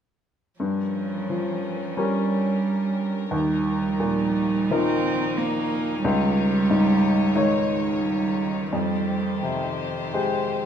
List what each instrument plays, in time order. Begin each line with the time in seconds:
0.59 upright piano G2, cello F3, string section G3 C#4 A#4
1.29 upright piano F3
1.97 cello G3, upright piano G3 C#4 A#4
3.31 upright piano D#2, string section F3 D#4, cello G3
4.00 upright piano A#2
4.71 upright piano F3 D#4 A#4, cello C4
5.37 cello A#3
6.03 upright piano C#2, string section D#3 C#5, cello G3
6.70 upright piano G#2
7.34 upright piano D#3 D#4 C#5, cello G#3
8.01 cello G3
8.71 upright piano F2, cello G3, string section G4 C5
9.43 upright piano C3, cello F3
10.14 upright piano G#3 G4 C5